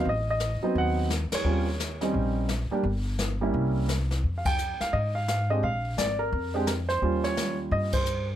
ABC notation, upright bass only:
X:1
M:4/4
L:1/8
Q:"Swing" 1/4=172
K:Ebmix
V:1 name="Upright bass" clef=bass
=A,,,3 z E,,3 z | E,,4 B,,,3 z | G,,,4 C,,4 | F,,3 z A,,4 |
B,,,2 A,,,2 F,,4 | E,,4 G,,4 |]